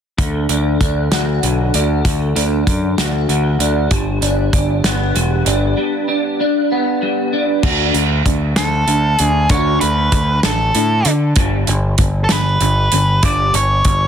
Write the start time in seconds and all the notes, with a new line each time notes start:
0.18 D2 D3, kick, closed hi-hat
0.49 D2 D4, closed hi-hat
0.81 D2 D4, kick, closed hi-hat
1.11 D2 F#4, snare, closed hi-hat
1.43 B1 D3, closed hi-hat
1.74 D2 D4, closed hi-hat
2.05 D2 D3, kick, closed hi-hat
2.35 D2 D4, closed hi-hat
2.67 F#2 D4, kick, closed hi-hat
2.98 D2 F#4, snare, closed hi-hat
3.29 D2 D3, closed hi-hat
3.59 D2 D4, closed hi-hat
3.91 G1 G3, kick, closed hi-hat
4.21 G1 D4, closed hi-hat
4.53 G1 D4, kick, closed hi-hat
4.84 G1 B3, snare, closed hi-hat
5.15 E1 G3, closed hi-hat
5.46 G1 D4, closed hi-hat
5.77 G3
6.08 D4
6.40 D4
6.72 B3
7.02 G3
7.33 D4
7.63 D2 D3 D4 F#4, kick, crash
7.94 D2 D3 D4, closed hi-hat
8.26 D2 D3 D4, kick, closed hi-hat
8.56 D2 D3 D4 A4, snare, closed hi-hat
8.87 D2 D3 D4, closed hi-hat
9.19 D2 D3 D4 G#4, closed hi-hat
9.49 D2 D3 D4 F#4 C#5, kick, closed hi-hat
9.81 D2 D3 D4 B4, closed hi-hat
10.12 D2 D3 D4, kick, closed hi-hat
10.43 A1 D3 D4 A4, snare, closed hi-hat
10.75 A2 D3 D4, closed hi-hat
11.05 D3 D4, closed hi-hat
11.36 G1 G2 D3 G3, kick, closed hi-hat
11.67 G1 G2 D3, closed hi-hat
11.98 G1 G2 D3, kick, closed hi-hat
12.24 A4
12.29 G1 G2 D3 B4, snare, closed hi-hat
12.61 G1 G2 D3, closed hi-hat
12.92 G1 G2 D3, closed hi-hat
13.23 G1 G2 D3 G3 D5, kick, closed hi-hat
13.54 G1 G2 D3 C#5, closed hi-hat
13.85 G1 G2 D3, kick, closed hi-hat